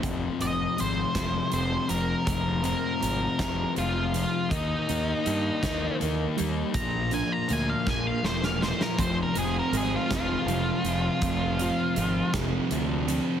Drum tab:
HH |x-x-x-x-x-x-|x-x-x-x-x-x-|x-x-x-x-x-x-|x-x-x-------|
SD |------o-----|------o-----|------o-----|------o-oooo|
BD |o-----o-----|o-----o-----|o-----o-----|o-----o-----|

HH |x-x-x-x-x-x-|x-x-x-x-x-x-|
SD |------o-----|------o-----|
BD |o-----o-----|o-----o-----|